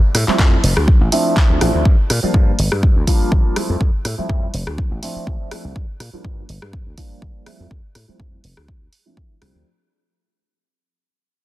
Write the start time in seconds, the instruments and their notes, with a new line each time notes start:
0.15 slap bass A2, cross-stick, open hi-hat
0.28 grand piano F3 G3 A3 C4 E4, muted slap bass stroke, clap
0.39 slap bass F2, grand piano F3 G3 A3 C4, kick, clap
0.63 slap bass F1, open hi-hat
0.77 slap bass D2, cross-stick
0.88 kick
1.01 slap bass A1
1.12 grand piano F3 A3 C4 D4 E4, open hi-hat
1.37 kick, clap
1.50 slap bass D2
1.61 slap bass A1, grand piano F3 A3 C4 D4 E4, cross-stick, open hi-hat
1.75 slap bass D2
1.85 slap bass G2, kick
2.10 slap bass A#2, cross-stick, open hi-hat
2.23 grand piano F3 G3 A#3 D4 F4, muted slap bass stroke
2.34 slap bass G2, grand piano F3 G3 A#3 D4 F4, kick
2.59 slap bass G1, open hi-hat
2.72 slap bass G2, cross-stick
2.83 kick
2.96 slap bass D2
3.07 grand piano F3 G3 A#3 D4 F4, kick, open hi-hat
3.21 muted slap bass stroke
3.32 slap bass G1, kick
3.56 grand piano F3 G3 A3 C4 E4, muted slap bass stroke, cross-stick, open hi-hat
3.69 slap bass F2
3.81 slap bass F2, kick
4.05 slap bass A2, cross-stick, open hi-hat
4.18 grand piano F3 G3 A3 C4 E4, muted slap bass stroke
4.29 slap bass F2, kick
4.54 slap bass F1, open hi-hat
4.67 slap bass D2, cross-stick
4.78 kick
4.91 slap bass A1
5.02 grand piano F3 A3 C4 D4 E4, open hi-hat
5.16 muted slap bass stroke
5.27 slap bass A1, kick
5.51 grand piano F3 A3 C4 D4 E4, muted slap bass stroke, cross-stick, open hi-hat
5.64 slap bass C2
5.76 slap bass G2, kick
6.00 slap bass A#2, cross-stick, open hi-hat
6.13 grand piano F3 G3 A#3 D4 F4, muted slap bass stroke
6.24 slap bass G2, grand piano F3 G3 A#3 D4 F4, kick
6.49 slap bass G1, open hi-hat
6.62 slap bass G2, cross-stick
6.73 kick
6.86 slap bass D2
6.97 grand piano F3 G3 A#3 D4 F4, kick, open hi-hat
7.11 muted slap bass stroke
7.22 slap bass G1, kick
7.46 grand piano F3 G3 A3 C4 E4, muted slap bass stroke, cross-stick, open hi-hat
7.60 slap bass F2
7.71 slap bass F2, kick
7.95 slap bass A2, cross-stick, open hi-hat
8.08 grand piano F3 G3 A3 C4 E4, muted slap bass stroke
8.19 slap bass F2, grand piano F3 G3 A3 E4, kick
8.44 slap bass F1, open hi-hat
8.57 slap bass D2, cross-stick
8.68 kick
8.93 open hi-hat
9.06 grand piano F3 A3 C4 D4 E4
9.17 grand piano A3, kick
9.41 slap bass C2, grand piano F3 A3 C4 D4 G4, cross-stick, open hi-hat
9.55 slap bass D2